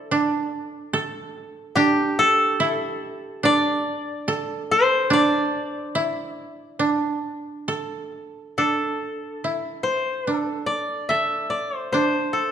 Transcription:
0.00 0.11 D4 medium
0.00 1.53 E4 medium
0.00 0.94 A4 medium
0.00 0.11 C5 medium
0.00 0.43 D5 medium
0.11 1.76 D4 medium
0.93 2.84 A4 medium
1.75 3.43 D4 medium
1.75 3.79 G4 medium
2.19 4.09 A4 loud
2.60 4.86 E4 medium
3.43 5.10 D4 medium
3.43 5.05 D5 loud
4.28 6.18 A4 medium
4.71 6.43 C5 medium
5.10 6.79 D4 medium
5.10 7.66 D5 medium
5.95 8.21 E4 medium
6.79 8.58 D4 medium
7.68 9.58 A4 medium
8.58 10.27 D4 medium
8.58 10.37 A4 medium
9.44 11.71 E4 medium
9.83 10.37 C5 medium
10.27 11.93 D4 medium
10.37 11.55 A4 medium
10.66 11.50 D5 medium
11.09 12.52 A4 medium
11.09 12.52 E5 medium
11.50 11.76 D5 medium
11.76 11.93 C5 medium
11.93 12.52 D4 medium
11.93 12.52 C5 medium
12.33 12.52 A4 medium

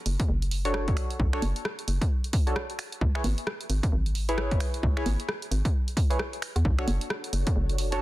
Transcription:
0.06 0.17 F#1 medium
0.06 open hi-hat loud
0.20 kick loud
0.20 closed hi-hat medium
0.29 0.94 F#1 medium
0.42 closed hi-hat soft
0.51 open hi-hat loud
0.65 1.30 D4 medium
0.65 1.30 F#4 medium
0.65 1.30 A4 medium
0.65 1.30 C#5 medium
0.65 closed hi-hat medium
0.74 cross-stick loud
0.88 kick loud
0.88 closed hi-hat soft
0.97 finger snap medium
0.97 open hi-hat loud
1.10 closed hi-hat medium
1.20 1.30 B1 loud
1.20 kick loud
1.33 1.41 D4 medium
1.33 1.41 F#4 medium
1.33 1.41 A4 medium
1.33 1.41 C#5 loud
1.33 finger snap medium
1.42 1.53 F#1 loud
1.42 open hi-hat loud
1.42 high conga medium
1.56 closed hi-hat medium
1.65 cross-stick loud
1.79 closed hi-hat soft
1.88 1.99 F#1 medium
1.88 open hi-hat loud
2.01 kick loud
2.01 closed hi-hat medium
2.24 closed hi-hat medium
2.33 kick loud
2.33 open hi-hat loud
2.47 2.55 D4 medium
2.47 2.55 F#4 medium
2.47 2.55 A4 medium
2.47 2.55 C#5 medium
2.47 closed hi-hat medium
2.56 cross-stick loud
2.70 closed hi-hat soft
2.79 finger snap medium
2.79 open hi-hat loud
2.92 closed hi-hat medium
3.01 3.12 C#2 medium
3.01 kick loud
3.15 3.23 E4 medium
3.15 3.23 G#4 medium
3.15 3.23 B4 medium
3.15 3.23 C#5 medium
3.15 finger snap medium
3.24 3.35 G#1 medium
3.24 open hi-hat loud
3.24 high conga medium
3.38 closed hi-hat medium
3.47 cross-stick loud
3.61 closed hi-hat soft
3.70 3.80 G#1 medium
3.70 open hi-hat loud
3.83 kick loud
3.83 closed hi-hat medium
3.92 4.57 G#1 medium
4.06 closed hi-hat soft
4.15 open hi-hat loud
4.29 4.94 E4 medium
4.29 4.94 G#4 medium
4.29 4.94 B4 medium
4.29 4.94 C#5 medium
4.29 closed hi-hat medium
4.38 cross-stick loud
4.51 kick loud
4.51 closed hi-hat soft
4.60 finger snap medium
4.60 open hi-hat loud
4.74 closed hi-hat medium
4.83 4.94 C#2 loud
4.83 kick loud
4.97 5.05 E4 medium
4.97 5.05 G#4 medium
4.97 5.05 B4 medium
4.97 5.05 C#5 loud
4.97 finger snap medium
5.06 5.17 G#1 medium
5.06 open hi-hat medium
5.06 high conga medium
5.20 closed hi-hat medium
5.29 cross-stick loud
5.42 closed hi-hat soft
5.51 5.62 G#1 medium
5.51 open hi-hat medium
5.65 kick loud
5.65 closed hi-hat medium
5.88 closed hi-hat soft
5.97 kick loud
5.97 open hi-hat loud
6.10 6.18 E4 medium
6.10 6.18 G#4 medium
6.10 6.18 B4 medium
6.10 6.18 C#5 medium
6.10 closed hi-hat medium
6.19 cross-stick loud
6.33 closed hi-hat soft
6.42 finger snap medium
6.42 open hi-hat loud
6.56 6.63 E2 medium
6.56 closed hi-hat medium
6.65 6.76 B1 loud
6.65 8.02 D4 medium
6.65 8.02 F#4 medium
6.65 8.02 A4 medium
6.65 8.02 C#5 medium
6.65 kick loud
6.79 6.87 D4 medium
6.79 6.87 F#4 medium
6.79 6.87 A4 medium
6.79 6.87 C#5 medium
6.79 finger snap medium
6.88 6.98 F#1 medium
6.88 open hi-hat medium
6.88 high conga medium
7.01 closed hi-hat medium
7.10 cross-stick loud
7.24 closed hi-hat soft
7.33 7.44 F#1 medium
7.33 open hi-hat medium
7.47 kick loud
7.47 closed hi-hat medium
7.56 8.02 F#1 loud
7.69 closed hi-hat medium
7.78 open hi-hat loud
7.92 8.02 D4 medium
7.92 8.02 F#4 medium
7.92 8.02 A4 medium
7.92 8.02 C#5 loud
7.92 8.02 A5 medium
7.92 closed hi-hat medium

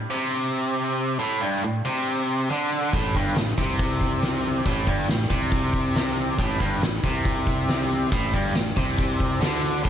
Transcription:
0.10 1.19 C3 loud
1.19 1.41 A2 loud
1.41 1.62 G2 medium
1.64 1.81 A2 medium
1.85 2.49 C3 medium
2.50 2.93 D3 loud
2.93 3.13 A1 medium
2.93 3.14 A2 loud
2.93 kick loud
2.93 closed hi-hat medium
3.15 3.35 G1 medium
3.15 3.36 G2 medium
3.15 kick medium
3.15 closed hi-hat medium
3.36 3.57 A1 medium
3.36 3.54 A2 medium
3.36 snare medium
3.36 closed hi-hat medium
3.58 4.62 C2 medium
3.58 4.65 C3 loud
3.58 kick medium
3.58 closed hi-hat medium
3.79 kick loud
3.79 closed hi-hat medium
4.01 kick medium
4.01 closed hi-hat medium
4.23 snare medium
4.23 closed hi-hat medium
4.45 closed hi-hat medium
4.65 4.86 A1 medium
4.65 4.87 A2 medium
4.65 kick medium
4.65 closed hi-hat medium
4.87 5.07 G1 medium
4.87 5.08 G2 loud
4.87 kick medium
4.87 closed hi-hat medium
5.08 5.29 A1 medium
5.08 5.26 A2 medium
5.08 snare loud
5.08 closed hi-hat medium
5.30 6.34 C2 medium
5.30 6.38 C3 loud
5.30 kick medium
5.30 closed hi-hat medium
5.52 kick loud
5.52 closed hi-hat medium
5.74 kick medium
5.74 closed hi-hat medium
5.96 snare loud
5.96 closed hi-hat medium
6.17 closed hi-hat medium
6.38 6.59 A1 medium
6.38 6.60 A2 loud
6.38 kick loud
6.38 closed hi-hat medium
6.60 6.80 G1 medium
6.60 6.81 G2 loud
6.60 kick medium
6.60 closed hi-hat medium
6.82 7.02 A1 medium
6.82 6.99 A2 medium
6.82 snare medium
6.82 closed hi-hat medium
7.03 8.07 C2 medium
7.03 8.11 C3 loud
7.03 kick medium
7.03 closed hi-hat medium
7.25 kick loud
7.25 closed hi-hat medium
7.47 kick medium
7.47 closed hi-hat medium
7.69 snare loud
7.69 closed hi-hat medium
7.91 closed hi-hat medium
8.12 8.32 A1 medium
8.12 8.33 A2 medium
8.12 kick loud
8.12 closed hi-hat medium
8.33 8.53 G1 medium
8.33 8.54 G2 loud
8.33 kick medium
8.33 closed hi-hat medium
8.55 8.75 A1 medium
8.55 8.72 A2 medium
8.55 snare medium
8.55 closed hi-hat medium
8.76 9.38 C2 medium
8.76 9.41 C3 loud
8.76 kick medium
8.76 closed hi-hat medium
8.98 kick loud
8.98 closed hi-hat medium
9.20 kick medium
9.20 closed hi-hat medium
9.41 9.82 D2 medium
9.41 9.83 D3 medium
9.41 snare medium
9.41 closed hi-hat medium
9.64 closed hi-hat medium
9.84 9.89 A1 medium
9.84 9.89 A2 loud
9.84 kick loud
9.84 closed hi-hat medium

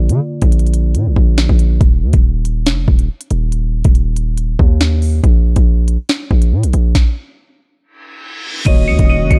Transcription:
0.00 0.11 A#1 loud
0.00 1.76 D3 medium
0.00 1.77 A#3 medium
0.00 1.77 F4 medium
0.00 1.77 D5 medium
0.09 0.20 D3 loud
0.09 closed hi-hat medium
0.42 0.97 A#1 loud
0.42 kick medium
0.42 closed hi-hat medium
0.52 closed hi-hat medium
0.59 closed hi-hat medium
0.66 closed hi-hat soft
0.74 closed hi-hat medium
0.95 1.08 A#2 loud
0.95 closed hi-hat medium
1.06 1.16 A#1 loud
1.16 1.48 A#1 loud
1.16 kick medium
1.38 snare loud
1.38 closed hi-hat medium
1.49 1.79 A#1 loud
1.49 kick medium
1.59 closed hi-hat medium
1.81 2.04 D#1 loud
1.81 kick loud
1.81 closed hi-hat medium
2.02 2.13 D#2 loud
2.13 2.68 D#1 loud
2.13 kick loud
2.13 closed hi-hat medium
2.45 closed hi-hat medium
2.66 2.87 F1 loud
2.66 snare loud
2.66 closed hi-hat medium
2.88 3.08 D#1 loud
2.88 kick medium
2.99 closed hi-hat medium
3.21 closed hi-hat medium
3.31 3.83 D#1 loud
3.31 closed hi-hat medium
3.52 closed hi-hat medium
3.84 4.56 D#1 loud
3.84 kick loud
3.84 closed hi-hat medium
3.95 closed hi-hat medium
4.16 closed hi-hat medium
4.38 closed hi-hat medium
4.59 5.21 D#2 loud
4.59 kick medium
4.81 snare loud
4.81 closed hi-hat medium
5.02 open hi-hat medium
5.24 5.55 A#1 loud
5.24 kick loud
5.24 closed hi-hat medium
5.56 5.98 A#1 loud
5.56 kick loud
5.56 closed hi-hat medium
5.88 closed hi-hat medium
6.09 snare loud
6.09 closed hi-hat medium
6.31 6.54 A#1 loud
6.31 kick medium
6.42 closed hi-hat medium
6.52 6.65 A#2 loud
6.63 6.73 A#1 loud
6.63 closed hi-hat medium
6.73 6.94 A#1 loud
6.73 closed hi-hat medium
6.95 kick loud
6.95 snare medium
7.81 reverse cymbal medium
8.65 8.89 D#1 loud
8.65 9.39 D#3 medium
8.65 9.39 A#3 medium
8.65 9.39 C#4 medium
8.65 9.39 F#4 medium
8.65 9.39 C#5 medium
8.65 9.39 D#5 loud
8.65 8.85 D#7 medium
8.65 kick loud
8.65 closed hi-hat medium
8.65 crash loud
8.65 impact medium
8.88 8.99 D#2 loud
8.88 9.06 C#7 medium
8.99 9.22 D#1 loud
8.99 kick loud
8.99 closed hi-hat medium
9.10 9.28 D#7 medium
9.21 9.30 F1 loud
9.30 9.39 F#1 loud
9.30 9.39 C#7 medium
9.30 kick loud
9.30 closed hi-hat medium

